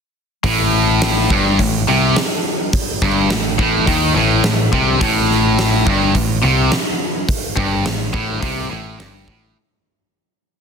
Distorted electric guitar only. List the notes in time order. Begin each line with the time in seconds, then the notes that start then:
0.44 A2
1.30 G2
1.60 A2
1.88 C3
3.03 G2
3.30 A2
3.59 A2
3.87 D#3
4.16 A2
4.45 A2
4.73 C3
5.01 A2
5.86 G2
6.15 A2
6.43 C3
7.57 G2
7.85 A2
8.13 A2
8.42 C3
8.69 A2
8.98 G2
9.27 A2